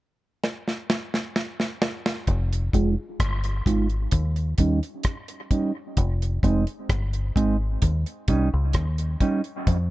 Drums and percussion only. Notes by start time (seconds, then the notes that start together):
0.44 snare
0.68 snare
0.90 snare
1.14 snare
1.36 snare
1.60 snare
1.82 snare
2.06 snare
2.27 kick, closed hi-hat
2.53 closed hi-hat
2.73 kick, closed hi-hat
3.20 kick, cross-stick, closed hi-hat
3.44 closed hi-hat
3.66 kick, closed hi-hat
3.89 closed hi-hat
4.11 kick, closed hi-hat
4.36 closed hi-hat
4.58 kick, closed hi-hat
4.83 closed hi-hat
5.03 kick, cross-stick, closed hi-hat
5.28 closed hi-hat
5.51 kick, closed hi-hat
5.97 kick, closed hi-hat
6.22 closed hi-hat
6.43 kick, closed hi-hat
6.67 closed hi-hat
6.89 kick, cross-stick, closed hi-hat
7.13 closed hi-hat
7.36 kick, closed hi-hat
7.82 kick, closed hi-hat
8.06 closed hi-hat
8.28 kick, closed hi-hat
8.73 kick, cross-stick, closed hi-hat
8.98 closed hi-hat
9.21 kick, closed hi-hat
9.44 closed hi-hat
9.67 kick, closed hi-hat